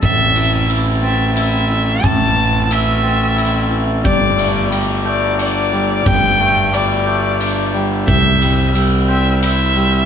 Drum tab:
RD |xxx-x-|x-x-x-|xxx-x-|x-x-x-|
BD |o-----|o-----|o-----|o-----|

RD |xxx-x-|
BD |o-----|